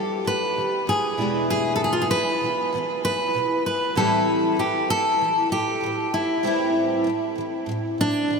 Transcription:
0.00 0.19 G2 soft
0.00 0.19 D3 soft
0.00 0.20 F3 soft
0.00 0.27 A4 medium
0.25 0.50 G2 medium
0.25 0.50 D3 medium
0.25 0.51 F3 medium
0.25 0.84 B4 medium
0.56 0.81 G2 soft
0.56 0.82 D3 soft
0.56 0.82 F3 soft
0.87 1.12 G2 medium
0.87 1.13 D3 medium
0.87 1.13 F3 medium
0.87 1.46 G#4 medium
1.17 2.09 E2 medium
1.17 2.10 B2 medium
1.17 2.12 E3 medium
1.17 2.11 G#3 medium
1.17 2.11 D4 medium
1.17 3.97 E4 medium
1.50 1.74 G#4 medium
1.76 1.84 A4 medium
1.84 1.93 G#4 medium
1.93 2.02 F4 medium
2.02 2.10 G#4 medium
2.10 2.35 E2 medium
2.10 2.36 B2 medium
2.10 2.37 E3 medium
2.10 3.04 B4 medium
2.41 2.66 E2 soft
2.41 2.67 B2 soft
2.41 2.67 E3 soft
2.72 2.97 E2 medium
2.72 2.98 B2 medium
2.72 2.99 E3 medium
3.04 3.28 E2 soft
3.04 3.29 B2 soft
3.04 3.30 E3 soft
3.04 3.62 B4 medium
3.33 3.59 E2 medium
3.33 3.59 B2 medium
3.33 3.60 E3 medium
3.66 3.97 B4 medium
3.95 4.55 A2 medium
3.95 4.58 E3 medium
3.95 4.59 G3 medium
3.95 4.58 C4 medium
3.95 4.59 E4 medium
3.95 4.55 A4 medium
4.56 4.82 A2 medium
4.56 4.83 E3 medium
4.56 4.88 G4 medium
4.88 5.14 A2 soft
4.88 5.15 E3 soft
4.88 5.52 A4 medium
5.19 5.44 A2 soft
5.19 5.46 E3 medium
5.50 5.75 A2 soft
5.50 5.77 E3 soft
5.50 6.09 G4 medium
5.81 6.06 A2 medium
5.81 6.07 E3 medium
6.14 6.71 E4 medium
6.43 7.03 A2 medium
6.43 7.05 E3 medium
6.43 7.07 G3 medium
6.43 7.06 C4 medium
6.43 7.06 E4 medium
7.04 7.30 A2 medium
7.04 7.31 E3 medium
7.35 7.61 A2 soft
7.35 7.62 E3 medium
7.66 7.92 A2 medium
7.66 7.93 E3 medium
7.98 8.23 A2 soft
7.98 8.24 E3 medium
7.98 8.40 D4 medium
8.28 8.40 A2 medium
8.28 8.40 E3 medium

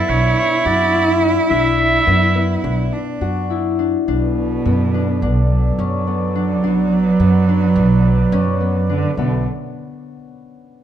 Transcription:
0.00 2.06 B3 medium
0.00 0.94 E4 medium
0.00 2.94 E4 loud
0.00 0.56 F#4 medium
0.00 0.11 A4 medium
0.09 0.32 B1 medium
0.09 1.22 D4 medium
0.09 0.37 C#5 medium
0.38 0.68 C#5 medium
0.66 1.36 F#2 medium
0.66 3.09 F#4 medium
0.66 1.22 D5 medium
0.94 3.50 E4 medium
1.22 1.49 D4 medium
1.50 1.98 B1 medium
1.50 2.63 D4 medium
1.50 2.60 E5 loud
2.07 2.55 F#2 loud
2.07 2.35 B3 medium
2.35 4.65 B3 medium
2.64 2.88 B1 medium
2.64 3.78 D4 medium
2.93 3.80 D4 medium
3.21 3.94 F#2 medium
3.21 5.65 F#4 medium
3.50 6.11 E4 medium
3.79 4.07 D4 medium
4.08 4.56 B1 medium
4.08 5.47 B2 medium
4.08 9.15 B3 medium
4.08 4.94 D4 medium
4.08 6.62 A4 medium
4.08 9.14 D5 medium
4.65 5.24 F#2 medium
4.65 6.07 B3 medium
4.94 5.22 D4 medium
5.22 5.70 B1 medium
5.22 5.85 D4 medium
5.51 8.91 F#3 medium
5.78 6.63 F#2 medium
5.78 6.41 C#4 medium
6.07 7.20 B3 medium
6.35 6.63 D4 medium
6.63 7.10 B1 medium
6.63 6.95 D4 medium
6.63 9.16 B4 medium
7.20 7.77 F#2 medium
7.20 7.36 B3 medium
7.48 7.64 D4 medium
7.75 8.23 B1 medium
7.75 8.07 D4 medium
8.32 9.04 F#2 medium
8.32 8.48 C#4 medium
8.60 8.76 B3 medium
8.89 9.18 D3 medium
8.89 9.05 D4 medium
9.17 9.44 B1 medium
9.17 9.44 B2 medium
9.17 9.45 D3 medium
9.17 9.44 A3 medium
9.17 9.45 B3 medium
9.17 9.44 D5 medium

